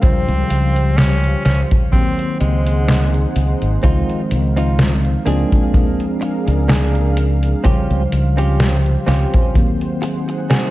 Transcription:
0.00 1.84 C#3 medium
0.00 1.84 F3 medium
0.00 1.85 G3 medium
0.00 0.99 C4 loud
0.00 1.92 G4 medium
0.00 5.23 C5 medium
0.00 1.89 F5 medium
0.00 muted fingered electric bass stroke soft
0.00 kick loud
0.00 closed hi-hat medium
0.04 1.85 C5 medium
0.29 0.43 C#2 medium
0.29 closed hi-hat soft
0.50 1.34 C#2 medium
0.50 closed hi-hat medium
0.76 closed hi-hat soft
0.97 1.44 C#4 loud
0.97 snare loud
0.97 closed hi-hat soft
1.24 closed hi-hat soft
1.45 1.63 C#2 medium
1.45 1.61 C#4 loud
1.45 snare medium
1.45 closed hi-hat medium
1.71 kick loud
1.71 closed hi-hat soft
1.92 3.74 D#3 medium
1.92 3.75 F#3 medium
1.92 3.75 A#3 medium
1.92 2.37 C4 loud
1.92 3.76 C4 medium
1.92 5.23 D#4 medium
1.92 3.82 G#4 medium
1.92 3.82 F#5 medium
1.92 kick loud
1.92 closed hi-hat soft
2.19 closed hi-hat soft
2.40 3.24 C#2 medium
2.40 3.32 G#3 medium
2.40 closed hi-hat medium
2.66 closed hi-hat soft
2.88 snare loud
2.88 closed hi-hat soft
3.14 closed hi-hat soft
3.36 3.53 C#2 medium
3.36 closed hi-hat medium
3.62 3.76 G#1 medium
3.62 closed hi-hat soft
3.82 4.01 C#2 medium
3.82 5.17 D#3 medium
3.82 5.18 F3 medium
3.82 5.18 G#3 medium
3.82 4.20 C4 loud
3.82 5.19 C4 medium
3.82 4.21 D#4 loud
3.82 4.21 F4 loud
3.82 5.25 F5 medium
3.82 kick loud
3.82 closed hi-hat soft
4.09 closed hi-hat soft
4.31 5.15 C#2 medium
4.31 closed hi-hat medium
4.56 4.92 C4 medium
4.56 4.92 D#4 medium
4.56 4.92 F4 medium
4.56 closed hi-hat soft
4.79 snare loud
4.79 closed hi-hat soft
5.05 closed hi-hat soft
5.25 5.44 C#2 medium
5.25 7.56 F3 medium
5.25 7.56 G#3 medium
5.25 6.04 A#3 medium
5.25 7.57 C4 medium
5.25 7.55 D4 medium
5.25 6.04 D4 medium
5.25 7.63 D4 medium
5.25 6.05 G#4 loud
5.25 7.63 G#4 medium
5.25 7.63 A#4 medium
5.25 9.51 F5 medium
5.25 closed hi-hat medium
5.52 kick medium
5.52 closed hi-hat soft
5.74 kick loud
5.74 closed hi-hat soft
6.00 closed hi-hat soft
6.21 muted clean electric guitar stroke loud
6.21 closed hi-hat medium
6.47 7.53 C#2 medium
6.47 muted clean electric guitar stroke soft
6.47 closed hi-hat soft
6.68 7.17 A#3 medium
6.68 7.17 D4 medium
6.68 7.17 G#4 medium
6.68 snare loud
6.68 closed hi-hat soft
6.95 closed hi-hat soft
7.17 closed hi-hat medium
7.43 closed hi-hat soft
7.63 9.46 C#3 medium
7.63 9.46 F3 medium
7.63 9.47 G3 medium
7.63 8.01 C4 loud
7.63 8.01 C#4 loud
7.63 8.02 F4 loud
7.63 9.54 G4 medium
7.63 8.02 G4 loud
7.63 10.71 C5 medium
7.63 9.47 C5 medium
7.63 muted fingered electric bass stroke soft
7.63 kick loud
7.63 closed hi-hat soft
7.91 8.05 C#2 medium
7.91 closed hi-hat soft
8.12 8.96 C#2 medium
8.12 closed hi-hat medium
8.37 8.72 C4 medium
8.37 8.73 C#4 medium
8.37 8.73 F4 medium
8.37 8.73 G4 loud
8.37 closed hi-hat soft
8.60 snare loud
8.60 closed hi-hat soft
8.86 closed hi-hat soft
9.07 9.25 C#2 medium
9.07 9.55 C4 medium
9.07 9.55 C#4 medium
9.07 9.55 F4 medium
9.07 9.56 G4 medium
9.07 snare medium
9.07 closed hi-hat medium
9.34 kick loud
9.34 closed hi-hat soft
9.54 10.71 D#3 medium
9.54 10.71 F#3 medium
9.54 10.71 A#3 medium
9.54 10.71 C4 medium
9.54 10.71 D#4 medium
9.54 10.71 G#4 medium
9.54 10.71 F#5 medium
9.54 kick loud
9.54 closed hi-hat soft
9.81 closed hi-hat soft
10.02 muted clean electric guitar stroke loud
10.02 closed hi-hat medium
10.28 muted clean electric guitar stroke soft
10.28 closed hi-hat soft
10.50 10.71 C4 medium
10.50 10.71 F#4 medium
10.50 10.71 G#4 loud
10.50 snare loud
10.50 closed hi-hat soft

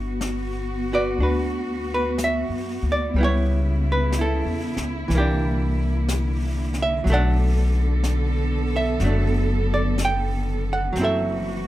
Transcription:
0.00 1.14 G1 medium
0.00 5.05 B3 soft
0.00 0.93 D4 soft
0.00 0.92 F#4 soft
0.00 3.09 F#4 medium
0.00 0.92 B4 soft
0.00 0.19 E5 medium
0.21 brush sweep soft
0.21 snare soft
0.21 hi-hat pedal soft
0.93 1.20 F#4 soft
0.93 1.22 B4 soft
0.93 1.23 D5 medium
1.18 2.45 D2 medium
1.18 3.15 D4 soft
1.18 3.16 F#4 soft
1.18 brush sweep soft
1.23 1.93 B4 soft
1.94 2.19 B4 medium
2.18 brush sweep soft
2.18 snare soft
2.18 hi-hat pedal soft
2.24 2.89 E5 medium
2.49 2.79 F#2 soft
2.82 3.12 D2 soft
2.92 3.16 D5 medium
3.13 4.40 C#2 medium
3.13 5.07 C#3 medium
3.13 5.08 G3 soft
3.13 7.01 E4 medium
3.13 brush sweep soft
3.18 5.12 B3 soft
3.18 4.18 E4 soft
3.24 3.89 C#5 medium
3.92 4.15 B4 medium
4.12 brush sweep soft
4.12 snare soft
4.12 hi-hat pedal soft
4.19 5.09 E4 soft
4.19 5.10 A4 medium
4.45 4.75 E2 soft
4.77 5.07 C#2 soft
4.77 snare soft
5.08 7.01 C2 medium
5.08 10.92 D3 medium
5.08 7.04 E3 soft
5.08 7.03 A#3 soft
5.08 brush sweep soft
5.08 snare soft
5.15 7.08 A#3 soft
5.15 5.19 E4 soft
5.15 6.75 G4 medium
5.20 7.10 D4 medium
6.08 brush sweep soft
6.08 snare soft
6.08 hi-hat pedal soft
6.74 snare soft
6.82 7.10 E5 medium
7.02 8.96 B1 medium
7.02 9.01 F#3 soft
7.02 10.90 B3 medium
7.02 10.90 A4 medium
7.07 9.03 A3 soft
7.07 brush sweep soft
7.07 snare soft
7.12 8.75 D4 soft
7.12 8.75 A4 medium
7.12 8.99 D5 soft
7.12 8.03 F#5 medium
8.04 brush sweep soft
8.04 snare soft
8.04 hi-hat pedal soft
8.76 9.05 A4 soft
8.76 9.66 E5 medium
9.00 10.91 F#1 medium
9.00 10.91 F#3 soft
9.00 brush sweep soft
9.00 snare soft
9.04 10.97 A3 soft
9.04 10.98 D4 soft
9.74 10.02 D5 medium
9.98 brush sweep soft
9.98 snare soft
9.98 hi-hat pedal soft
10.05 10.70 G5 medium
10.73 10.97 F#5 medium
10.93 11.67 F#1 medium
10.93 11.67 E3 soft
10.93 11.67 F#3 soft
10.93 11.67 A3 soft
10.93 11.67 F#4 medium
10.93 brush sweep soft
10.93 snare soft
10.97 11.67 C4 soft
10.97 11.67 E4 soft
11.03 11.67 A4 soft
11.03 11.67 E5 medium

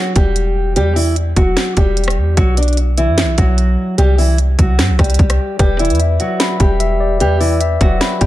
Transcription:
0.00 0.14 F#3 medium
0.00 0.13 F#4 medium
0.16 0.78 E1 loud
0.16 0.73 G3 medium
0.16 0.73 G4 medium
0.16 kick loud
0.16 closed hi-hat medium
0.36 closed hi-hat medium
0.76 1.34 E2 loud
0.76 0.95 G3 medium
0.76 0.95 G4 loud
0.76 closed hi-hat medium
0.96 1.15 E3 medium
0.96 1.15 E4 medium
0.96 open hi-hat medium
1.16 closed hi-hat medium
1.36 1.56 E1 loud
1.36 1.75 F#3 medium
1.36 1.75 F#4 medium
1.36 kick medium
1.36 closed hi-hat medium
1.57 snare loud
1.57 closed hi-hat medium
1.77 2.19 E1 loud
1.77 2.34 G3 medium
1.77 2.34 G4 medium
1.77 kick medium
1.77 closed hi-hat medium
1.97 closed hi-hat medium
2.04 closed hi-hat medium
2.08 cross-stick loud
2.08 closed hi-hat soft
2.17 2.36 E2 loud
2.37 3.10 B1 loud
2.37 2.56 F#3 medium
2.37 2.56 F#4 loud
2.37 kick loud
2.37 closed hi-hat medium
2.57 2.76 D4 medium
2.57 2.76 D5 medium
2.57 closed hi-hat medium
2.63 closed hi-hat medium
2.68 closed hi-hat medium
2.73 closed hi-hat soft
2.77 closed hi-hat medium
2.98 3.36 E3 medium
2.98 3.35 E4 medium
2.98 closed hi-hat medium
3.08 3.25 F#2 loud
3.18 snare loud
3.18 closed hi-hat medium
3.23 3.37 B1 loud
3.38 3.77 B1 loud
3.38 3.95 F#3 medium
3.38 3.95 F#4 medium
3.38 kick loud
3.38 closed hi-hat medium
3.58 closed hi-hat medium
3.98 4.56 C2 loud
3.98 4.17 G3 medium
3.98 4.17 G4 loud
3.98 closed hi-hat medium
4.18 4.37 E3 medium
4.18 4.37 E4 medium
4.18 open hi-hat medium
4.38 closed hi-hat medium
4.59 4.80 C2 loud
4.59 4.97 F#3 medium
4.59 4.96 F#4 medium
4.59 kick medium
4.59 closed hi-hat medium
4.79 4.91 G2 medium
4.79 snare loud
4.79 closed hi-hat medium
4.90 4.99 C2 loud
4.99 5.18 C2 loud
4.99 5.56 G3 medium
4.99 5.56 G4 medium
4.99 kick loud
4.99 cross-stick medium
4.99 closed hi-hat medium
5.04 closed hi-hat medium
5.10 closed hi-hat medium
5.14 closed hi-hat medium
5.19 5.38 C2 loud
5.19 kick loud
5.19 closed hi-hat soft
5.30 cross-stick medium
5.30 closed hi-hat medium
5.59 5.92 E1 loud
5.59 5.78 G3 medium
5.59 5.78 G4 loud
5.59 6.60 B4 medium
5.59 kick loud
5.59 closed hi-hat medium
5.79 5.99 E3 medium
5.79 5.98 E4 medium
5.79 6.80 D5 medium
5.79 closed hi-hat medium
5.85 closed hi-hat medium
5.90 6.18 E2 loud
5.90 closed hi-hat medium
5.95 closed hi-hat soft
6.00 6.79 E5 medium
6.00 closed hi-hat medium
6.20 6.58 F#3 medium
6.20 6.58 F#4 medium
6.20 closed hi-hat medium
6.40 7.41 B5 loud
6.40 snare loud
6.40 closed hi-hat medium
6.60 7.22 E1 loud
6.60 7.17 G3 medium
6.60 7.17 G4 medium
6.60 7.61 G5 medium
6.60 kick loud
6.60 closed hi-hat medium
6.80 7.59 E5 loud
6.80 closed hi-hat medium
7.00 7.39 D5 medium
7.20 7.78 E2 loud
7.20 7.40 G3 medium
7.20 7.39 G4 loud
7.20 8.21 B4 medium
7.20 closed hi-hat medium
7.40 7.59 E3 medium
7.40 7.59 E4 medium
7.40 8.26 D5 medium
7.40 open hi-hat medium
7.61 8.26 E5 medium
7.61 closed hi-hat medium
7.81 8.00 E1 loud
7.81 8.19 F#3 medium
7.81 8.19 F#4 medium
7.81 kick medium
7.81 closed hi-hat medium
8.01 8.26 B5 loud
8.01 snare loud
8.01 closed hi-hat medium
8.21 8.26 E1 loud
8.21 8.26 G3 medium
8.21 8.26 G4 medium
8.21 8.26 G5 loud
8.21 kick medium
8.21 closed hi-hat medium

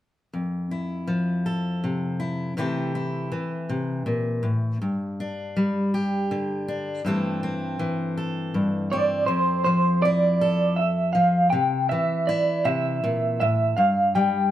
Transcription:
0.33 2.57 F2 soft
0.71 2.18 E4 soft
1.07 2.52 F3 medium
1.46 2.53 A4 soft
1.84 2.53 C3 soft
2.20 2.53 E4 soft
2.57 3.32 C3 soft
2.57 3.30 E3 soft
2.57 4.77 A3 soft
2.57 2.94 E4 soft
2.57 5.94 G4 soft
2.95 4.77 E4 soft
3.32 4.77 E3 soft
3.69 4.06 C3 soft
4.06 4.43 A#2 medium
4.43 4.81 A2 soft
4.82 7.01 G2 soft
5.20 6.67 D4 soft
5.57 7.01 G3 medium
5.94 7.01 G4 soft
6.31 7.01 D3 medium
6.68 7.01 D4 soft
7.05 8.53 G2 soft
7.05 7.78 E3 soft
7.05 9.25 A3 soft
7.05 7.42 C4 soft
7.05 8.16 A4 soft
7.43 8.91 C4 soft
7.79 9.24 E3 medium
8.17 9.25 A4 soft
8.54 9.25 G2 medium
8.92 10.05 C4 medium
8.92 9.26 D5 medium
9.26 11.53 F2 medium
9.26 9.62 C5 medium
9.64 11.14 F3 medium
9.64 10.02 C5 medium
10.02 10.79 E4 soft
10.02 10.76 D5 medium
10.41 11.49 A4 medium
10.76 11.12 E5 medium
11.13 11.48 F3 medium
11.13 11.50 F5 medium
11.50 11.90 C3 medium
11.50 11.86 G5 medium
11.89 13.73 E3 medium
11.89 12.28 E5 medium
12.27 13.73 E4 medium
12.27 12.66 D5 medium
12.65 13.02 C3 medium
12.65 13.39 E5 medium
13.04 13.40 A#2 medium
13.40 13.77 A2 medium
13.40 13.75 E5 medium
13.77 14.51 G2 medium
13.77 14.15 F5 medium
14.15 14.51 G3 medium
14.15 14.49 G5 medium

